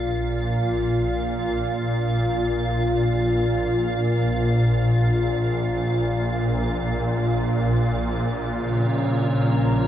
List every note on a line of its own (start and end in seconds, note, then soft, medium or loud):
0.00 9.88 A#1 medium
0.00 9.88 A#2 medium
0.00 8.58 F4 medium
0.00 8.57 F5 medium
8.56 9.88 C#4 medium
8.56 9.88 C#5 medium
9.30 9.88 A#5 medium
9.53 9.88 F4 medium